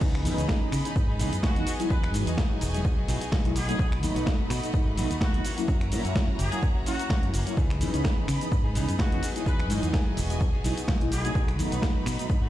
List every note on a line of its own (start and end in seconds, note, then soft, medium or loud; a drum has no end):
0.00 0.26 C#2 loud
0.00 0.22 E3 medium
0.00 0.38 E3 medium
0.00 0.22 B3 medium
0.00 0.38 B3 loud
0.00 0.23 C#4 medium
0.00 0.23 D#4 medium
0.00 0.37 D#4 loud
0.00 0.36 G#4 loud
0.00 3.52 D#5 medium
0.00 1.65 B5 medium
0.00 kick loud
0.00 crash medium
0.00 cabasa soft
0.15 finger snap medium
0.15 closed hi-hat medium
0.25 0.34 F#2 medium
0.25 0.58 E3 loud
0.25 0.58 B3 medium
0.25 0.59 C#4 medium
0.25 0.59 D#4 loud
0.25 open hi-hat loud
0.25 cabasa medium
0.37 0.45 C#2 loud
0.37 0.47 B3 medium
0.37 0.48 D#4 medium
0.37 0.48 G#4 medium
0.37 closed hi-hat medium
0.37 cabasa soft
0.48 0.61 E3 medium
0.48 0.62 B3 loud
0.48 0.61 D#4 loud
0.48 0.60 G#4 loud
0.48 kick loud
0.48 snare loud
0.48 cabasa soft
0.61 0.73 E3 medium
0.61 0.73 B3 medium
0.61 0.86 B3 medium
0.61 0.73 C#4 medium
0.61 0.73 D#4 loud
0.61 0.85 D#4 medium
0.61 0.84 G#4 medium
0.72 0.81 C#3 loud
0.72 finger snap medium
0.72 open hi-hat loud
0.72 cabasa medium
0.85 0.92 E3 medium
0.85 0.92 B3 medium
0.85 1.09 B3 medium
0.85 0.92 C#4 medium
0.85 0.92 D#4 medium
0.85 1.08 D#4 medium
0.85 1.07 G#4 medium
0.85 closed hi-hat medium
0.85 cabasa soft
0.96 1.21 G#2 medium
0.96 kick loud
0.96 cabasa soft
1.08 1.19 B3 medium
1.08 1.19 D#4 medium
1.08 1.19 G#4 medium
1.19 1.28 C#2 medium
1.19 1.28 E3 medium
1.19 1.42 E3 medium
1.19 1.28 B3 medium
1.19 1.42 B3 medium
1.19 1.28 C#4 medium
1.19 1.28 D#4 medium
1.19 1.43 D#4 medium
1.19 1.43 G#4 medium
1.19 open hi-hat loud
1.19 cabasa medium
1.33 1.40 F#2 medium
1.33 closed hi-hat medium
1.33 cabasa soft
1.43 1.66 E3 medium
1.43 1.66 B3 loud
1.43 1.67 D#4 loud
1.43 1.72 F#4 loud
1.43 1.67 G#4 loud
1.43 kick loud
1.43 snare loud
1.43 cabasa soft
1.56 1.63 E2 medium
1.56 1.63 E3 medium
1.56 1.63 B3 medium
1.56 1.63 C#4 medium
1.56 1.63 D#4 loud
1.56 closed hi-hat medium
1.66 1.79 F#3 medium
1.66 1.80 B3 medium
1.66 1.79 D#4 medium
1.66 3.54 F#4 medium
1.66 1.78 G#4 medium
1.66 3.54 G#5 medium
1.66 open hi-hat loud
1.66 cabasa medium
1.79 1.87 F#3 loud
1.79 1.87 G#3 medium
1.79 1.89 B3 medium
1.79 1.87 D#4 medium
1.79 1.90 D#4 medium
1.79 1.87 E4 loud
1.79 1.90 G#4 medium
1.79 closed hi-hat medium
1.79 cabasa soft
1.90 2.14 E2 loud
1.90 2.27 F#3 loud
1.90 2.27 B3 medium
1.90 2.27 D#4 loud
1.90 2.25 G#4 loud
1.90 2.11 B4 loud
1.90 kick loud
1.90 cabasa soft
2.04 finger snap medium
2.04 closed hi-hat medium
2.13 2.23 G#2 medium
2.13 2.48 E3 loud
2.13 2.47 F#3 medium
2.13 2.47 G#3 medium
2.13 2.48 D#4 medium
2.13 open hi-hat loud
2.13 cabasa medium
2.27 2.34 E2 loud
2.27 2.37 B3 soft
2.27 2.37 D#4 medium
2.27 2.37 G#4 medium
2.27 closed hi-hat medium
2.27 cabasa soft
2.37 2.50 F#3 medium
2.37 2.51 B3 loud
2.37 2.50 D#4 loud
2.37 2.49 G#4 loud
2.37 kick loud
2.37 snare loud
2.37 cabasa soft
2.50 2.62 F#3 medium
2.50 2.62 G#3 medium
2.50 2.75 B3 medium
2.50 2.62 D#4 medium
2.50 2.74 D#4 medium
2.50 2.62 E4 loud
2.50 2.72 G#4 medium
2.61 2.85 E1 loud
2.61 open hi-hat loud
2.61 cabasa medium
2.74 2.81 F#3 medium
2.74 2.81 G#3 medium
2.74 2.98 B3 medium
2.74 2.81 D#4 medium
2.74 2.97 D#4 medium
2.74 2.81 E4 loud
2.74 2.96 G#4 medium
2.74 closed hi-hat medium
2.74 cabasa soft
2.85 2.94 B1 loud
2.85 kick loud
2.85 cabasa soft
2.97 3.07 B3 medium
2.97 3.08 D#4 medium
2.97 3.08 G#4 medium
3.08 3.21 B1 loud
3.08 3.17 F#3 medium
3.08 3.21 F#3 medium
3.08 3.17 G#3 medium
3.08 3.22 B3 medium
3.08 3.17 D#4 medium
3.08 3.21 D#4 medium
3.08 3.17 E4 loud
3.08 3.20 G#4 medium
3.08 open hi-hat loud
3.08 cabasa medium
3.21 3.31 B3 medium
3.21 3.32 D#4 medium
3.21 3.32 G#4 medium
3.21 muted fingered electric bass stroke soft
3.21 closed hi-hat medium
3.21 cabasa soft
3.32 3.41 B1 medium
3.32 3.54 F#3 medium
3.32 3.56 B3 medium
3.32 3.55 D#4 loud
3.32 3.56 G#4 loud
3.32 kick loud
3.32 snare loud
3.32 cabasa soft
3.44 3.74 B1 loud
3.44 3.52 F#3 medium
3.44 3.52 G#3 medium
3.44 3.52 D#4 medium
3.44 3.52 E4 loud
3.44 closed hi-hat medium
3.55 3.68 F#3 medium
3.55 5.43 A3 medium
3.55 3.69 A3 medium
3.55 3.68 D#4 medium
3.55 3.67 F#4 medium
3.55 3.92 G#4 medium
3.55 5.43 D#5 medium
3.55 5.43 B5 medium
3.55 open hi-hat loud
3.55 cabasa medium
3.68 3.75 F#3 loud
3.68 3.76 A3 medium
3.68 3.78 A3 medium
3.68 3.76 B3 medium
3.68 3.76 D#4 loud
3.68 3.79 D#4 medium
3.68 3.79 F#4 medium
3.68 closed hi-hat medium
3.68 cabasa soft
3.79 4.03 B1 loud
3.79 4.16 F#3 medium
3.79 4.16 A3 loud
3.79 4.15 D#4 loud
3.79 4.14 F#4 loud
3.79 kick loud
3.79 cabasa soft
3.92 finger snap medium
3.92 closed hi-hat medium
4.02 4.12 D#2 loud
4.02 4.36 F#3 loud
4.02 4.36 A3 medium
4.02 4.36 B3 medium
4.02 4.37 D#4 loud
4.02 open hi-hat loud
4.02 cabasa medium
4.15 4.23 B1 loud
4.15 4.25 A3 medium
4.15 4.26 D#4 medium
4.15 4.26 F#4 medium
4.15 closed hi-hat medium
4.15 cabasa soft
4.26 4.39 F#3 loud
4.26 4.40 A3 loud
4.26 4.39 D#4 loud
4.26 4.38 F#4 loud
4.26 kick loud
4.26 snare loud
4.26 cabasa soft
4.39 4.51 F#3 medium
4.39 4.51 A3 medium
4.39 4.87 A3 medium
4.39 4.51 B3 medium
4.39 4.51 D#4 loud
4.39 4.86 D#4 medium
4.39 4.85 F#4 medium
4.50 4.59 B2 loud
4.50 finger snap medium
4.50 open hi-hat loud
4.50 cabasa medium
4.63 4.70 F#3 medium
4.63 4.70 A3 medium
4.63 4.70 B3 medium
4.63 4.70 D#4 loud
4.63 closed hi-hat medium
4.63 cabasa soft
4.74 4.99 G#2 medium
4.74 kick loud
4.74 cabasa soft
4.86 4.96 A3 medium
4.86 4.97 D#4 medium
4.86 4.97 F#4 medium
4.96 5.06 B1 loud
4.96 5.10 F#3 medium
4.96 5.06 F#3 medium
4.96 5.06 A3 medium
4.96 5.10 A3 medium
4.96 5.06 B3 medium
4.96 5.06 D#4 loud
4.96 5.10 D#4 medium
4.96 5.08 F#4 medium
4.96 open hi-hat loud
4.96 cabasa medium
5.10 5.18 D#2 medium
5.10 5.20 A3 medium
5.10 5.20 D#4 medium
5.10 5.21 F#4 medium
5.10 closed hi-hat medium
5.10 cabasa soft
5.20 5.43 F#3 loud
5.20 5.44 A3 medium
5.20 5.45 D#4 loud
5.20 5.50 F#4 loud
5.20 5.45 F#4 loud
5.20 kick loud
5.20 snare loud
5.20 cabasa soft
5.34 5.41 D#2 medium
5.34 5.41 F#3 loud
5.34 5.41 A3 medium
5.34 5.41 B3 medium
5.34 5.41 D#4 loud
5.34 closed hi-hat medium
5.44 5.57 E3 medium
5.44 5.58 A#3 medium
5.44 5.57 C#4 medium
5.44 7.55 F#4 medium
5.44 5.56 F#4 medium
5.44 7.55 E5 medium
5.44 7.55 A#5 medium
5.44 open hi-hat loud
5.44 cabasa medium
5.57 5.65 F#3 loud
5.57 5.65 A#3 medium
5.57 5.67 A#3 medium
5.57 5.65 C#4 medium
5.57 5.68 C#4 medium
5.57 5.65 E4 loud
5.57 5.68 F#4 medium
5.57 closed hi-hat medium
5.57 cabasa soft
5.68 5.93 F#2 loud
5.68 6.05 E3 medium
5.68 6.05 A#3 medium
5.68 6.04 C#4 medium
5.68 6.03 F#4 medium
5.68 kick loud
5.68 cabasa soft
5.81 finger snap medium
5.81 closed hi-hat soft
5.91 6.01 A#2 medium
5.91 6.25 F#3 medium
5.91 6.25 A#3 medium
5.91 6.25 C#4 medium
5.91 6.26 E4 loud
5.91 open hi-hat loud
5.91 cabasa medium
6.04 6.12 F#2 loud
6.04 6.14 A#3 medium
6.04 6.15 C#4 medium
6.04 6.15 F#4 medium
6.04 closed hi-hat medium
6.04 cabasa soft
6.15 6.28 E3 medium
6.15 6.29 A#3 medium
6.15 6.28 C#4 loud
6.15 6.27 F#4 loud
6.15 kick loud
6.15 snare loud
6.15 cabasa soft
6.28 6.40 F#3 loud
6.28 6.40 A#3 medium
6.28 6.53 A#3 medium
6.28 6.40 C#4 medium
6.28 6.52 C#4 medium
6.28 6.40 E4 loud
6.28 6.50 F#4 medium
6.39 6.48 F#1 loud
6.39 6.59 G#4 medium
6.39 open hi-hat loud
6.39 cabasa medium
6.51 6.59 F#3 medium
6.51 6.59 A#3 medium
6.51 6.76 A#3 soft
6.51 6.59 C#4 medium
6.51 6.75 C#4 medium
6.51 6.59 E4 loud
6.51 6.74 F#4 medium
6.51 closed hi-hat medium
6.51 cabasa soft
6.63 kick loud
6.63 cabasa soft
6.75 6.85 A#3 soft
6.75 6.86 C#4 medium
6.75 6.86 F#4 medium
6.86 6.99 E3 medium
6.86 6.95 F#3 medium
6.86 6.95 A#3 medium
6.86 6.99 A#3 medium
6.86 6.95 C#4 medium
6.86 6.99 C#4 medium
6.86 6.95 E4 loud
6.86 7.23 F#4 loud
6.86 6.97 F#4 medium
6.86 open hi-hat loud
6.86 cabasa medium
6.99 7.09 A#3 medium
6.99 7.09 C#4 medium
6.99 7.09 F#4 medium
6.99 closed hi-hat medium
6.99 cabasa soft
7.09 7.31 E3 medium
7.09 7.32 A#3 medium
7.09 7.33 C#4 loud
7.09 7.34 F#4 loud
7.09 kick loud
7.09 snare loud
7.09 cabasa soft
7.23 7.30 F#2 medium
7.23 7.30 F#3 loud
7.23 7.30 A#3 medium
7.23 7.30 C#4 medium
7.23 7.30 E4 loud
7.23 closed hi-hat medium
7.33 7.42 F#1 medium
7.33 7.46 E3 medium
7.33 7.47 A#3 medium
7.33 7.46 C#4 medium
7.33 7.45 F#4 medium
7.33 open hi-hat loud
7.33 cabasa medium
7.46 7.54 F#3 loud
7.46 7.54 A#3 medium
7.46 7.57 A#3 medium
7.46 7.54 C#4 medium
7.46 7.57 C#4 medium
7.46 7.54 E4 loud
7.46 7.57 F#4 medium
7.46 closed hi-hat medium
7.46 cabasa soft
7.57 7.82 C#2 loud
7.57 7.94 E3 loud
7.57 7.94 B3 loud
7.57 7.93 D#4 loud
7.57 7.92 G#4 loud
7.57 11.08 D#5 medium
7.57 9.21 B5 medium
7.57 kick loud
7.57 cabasa soft
7.70 finger snap medium
7.70 closed hi-hat soft
7.80 7.90 F#2 medium
7.80 8.14 E3 loud
7.80 8.14 B3 medium
7.80 8.14 C#4 medium
7.80 8.15 D#4 loud
7.80 open hi-hat loud
7.80 cabasa medium
7.93 8.01 C#2 loud
7.93 8.03 B3 medium
7.93 8.04 D#4 medium
7.93 8.04 G#4 medium
7.93 closed hi-hat medium
7.93 cabasa soft
8.04 8.17 E3 loud
8.04 8.18 B3 loud
8.04 8.17 D#4 loud
8.04 8.16 G#4 loud
8.04 kick loud
8.04 snare loud
8.04 cabasa soft
8.17 8.29 E3 medium
8.17 8.29 B3 medium
8.17 8.66 B3 medium
8.17 8.29 C#4 medium
8.17 8.65 D#4 medium
8.17 8.29 D#4 loud
8.17 8.64 G#4 medium
8.28 8.37 C#3 loud
8.28 finger snap medium
8.28 open hi-hat loud
8.28 cabasa medium
8.41 8.48 E3 medium
8.41 8.48 B3 medium
8.41 8.48 C#4 medium
8.41 8.48 D#4 loud
8.41 closed hi-hat medium
8.41 cabasa soft
8.52 8.77 G#2 medium
8.52 kick loud
8.52 cabasa soft
8.64 8.74 B3 medium
8.64 8.75 D#4 medium
8.64 8.75 G#4 medium
8.75 8.84 C#2 medium
8.75 8.97 E3 medium
8.75 8.84 E3 medium
8.75 8.84 B3 medium
8.75 8.98 B3 medium
8.75 8.84 C#4 medium
8.75 8.84 D#4 loud
8.75 8.98 D#4 medium
8.75 8.99 G#4 medium
8.75 open hi-hat loud
8.75 cabasa medium
8.89 8.96 F#2 medium
8.89 closed hi-hat medium
8.89 cabasa soft
8.99 9.21 E3 medium
8.99 9.22 B3 loud
8.99 9.22 D#4 loud
8.99 9.28 F#4 medium
8.99 9.23 G#4 loud
8.99 kick loud
8.99 snare loud
8.99 cabasa soft
9.12 9.19 E2 medium
9.12 9.19 E3 medium
9.12 9.19 B3 medium
9.12 9.19 C#4 medium
9.12 9.19 D#4 loud
9.12 closed hi-hat soft
9.22 9.35 F#3 medium
9.22 9.36 B3 medium
9.22 9.35 D#4 medium
9.22 11.10 F#4 medium
9.22 9.34 G#4 medium
9.22 11.10 G#5 medium
9.22 open hi-hat loud
9.22 cabasa medium
9.35 9.42 F#3 loud
9.35 9.43 G#3 medium
9.35 9.45 B3 medium
9.35 9.43 D#4 medium
9.35 9.46 D#4 medium
9.35 9.43 E4 loud
9.35 9.46 G#4 medium
9.35 closed hi-hat medium
9.35 cabasa soft
9.46 9.70 E2 loud
9.46 9.83 F#3 medium
9.46 9.83 B3 loud
9.46 9.82 D#4 loud
9.46 9.81 G#4 loud
9.46 9.67 B4 loud
9.46 kick loud
9.46 cabasa soft
9.60 finger snap medium
9.60 closed hi-hat soft
9.69 9.79 G#2 medium
9.69 10.04 E3 loud
9.69 10.03 F#3 loud
9.69 10.03 G#3 medium
9.69 10.03 D#4 medium
9.69 open hi-hat loud
9.69 cabasa medium
9.82 9.90 E2 loud
9.82 9.92 B3 medium
9.82 9.93 D#4 medium
9.82 9.93 G#4 medium
9.82 closed hi-hat medium
9.82 cabasa soft
9.93 10.06 F#3 medium
9.93 10.07 B3 loud
9.93 10.06 D#4 loud
9.93 10.05 G#4 loud
9.93 kick loud
9.93 snare loud
9.93 cabasa soft
10.06 10.18 F#3 medium
10.06 10.18 G#3 medium
10.06 10.55 B3 medium
10.06 10.18 D#4 medium
10.06 10.54 D#4 medium
10.06 10.18 E4 loud
10.06 10.52 G#4 medium
10.17 10.41 E1 loud
10.17 open hi-hat loud
10.17 cabasa medium
10.30 10.37 F#3 medium
10.30 10.37 G#3 medium
10.30 10.37 D#4 medium
10.30 10.38 E4 loud
10.30 closed hi-hat medium
10.30 cabasa soft
10.41 10.50 B1 loud
10.41 kick loud
10.41 cabasa soft
10.53 10.63 B3 medium
10.53 10.64 D#4 medium
10.53 10.64 G#4 medium
10.53 muted fingered electric bass stroke soft
10.64 10.77 B1 loud
10.64 10.86 F#3 medium
10.64 10.73 F#3 medium
10.64 10.73 G#3 medium
10.64 10.87 B3 medium
10.64 10.73 D#4 medium
10.64 10.88 D#4 medium
10.64 10.73 E4 loud
10.64 10.88 G#4 medium
10.64 open hi-hat loud
10.64 cabasa medium
10.78 muted fingered electric bass stroke soft
10.78 closed hi-hat medium
10.78 cabasa soft
10.88 10.97 B1 medium
10.88 11.10 F#3 loud
10.88 11.11 B3 loud
10.88 11.11 D#4 loud
10.88 11.12 G#4 loud
10.88 kick loud
10.88 snare loud
10.88 cabasa soft
11.01 11.30 B1 loud
11.01 11.08 F#3 loud
11.01 11.08 G#3 medium
11.01 11.08 D#4 medium
11.01 11.08 E4 loud
11.01 closed hi-hat medium
11.11 11.24 F#3 medium
11.11 11.25 A3 medium
11.11 12.49 D#4 medium
11.11 11.24 D#4 medium
11.11 11.23 F#4 medium
11.11 11.48 G#4 medium
11.11 12.49 B4 medium
11.11 12.49 B5 medium
11.11 open hi-hat loud
11.11 cabasa medium
11.24 11.32 F#3 loud
11.24 11.32 A3 medium
11.24 11.34 A3 medium
11.24 11.32 B3 medium
11.24 11.32 D#4 loud
11.24 11.35 D#4 medium
11.24 11.35 F#4 medium
11.24 closed hi-hat medium
11.24 cabasa soft
11.35 11.59 B1 loud
11.35 11.72 F#3 medium
11.35 11.72 A3 loud
11.35 11.71 D#4 medium
11.35 11.70 F#4 loud
11.35 kick loud
11.35 cabasa soft
11.48 finger snap medium
11.48 closed hi-hat medium
11.58 11.68 D#2 medium
11.58 11.92 F#3 loud
11.58 11.92 A3 medium
11.58 11.92 B3 medium
11.58 11.93 D#4 loud
11.58 open hi-hat loud
11.58 cabasa medium
11.71 11.79 B1 loud
11.71 11.81 A3 medium
11.71 11.82 D#4 medium
11.71 11.82 F#4 medium
11.71 closed hi-hat medium
11.71 cabasa soft
11.82 11.95 F#3 loud
11.82 11.96 A3 medium
11.82 11.95 D#4 loud
11.82 11.93 F#4 loud
11.82 kick loud
11.82 snare loud
11.82 cabasa soft
11.95 12.07 F#3 medium
11.95 12.07 A3 medium
11.95 12.43 A3 medium
11.95 12.07 B3 medium
11.95 12.07 D#4 loud
11.95 12.42 D#4 medium
11.95 12.42 F#4 medium
12.06 12.15 B2 loud
12.06 finger snap medium
12.06 open hi-hat loud
12.06 cabasa medium
12.18 12.26 F#3 medium
12.18 12.26 A3 medium
12.18 12.26 B3 medium
12.18 12.26 D#4 loud
12.18 closed hi-hat medium
12.18 cabasa soft
12.30 12.49 G#2 medium
12.30 kick loud
12.30 cabasa soft
12.42 12.49 A3 medium
12.42 12.49 D#4 medium
12.42 12.49 F#4 medium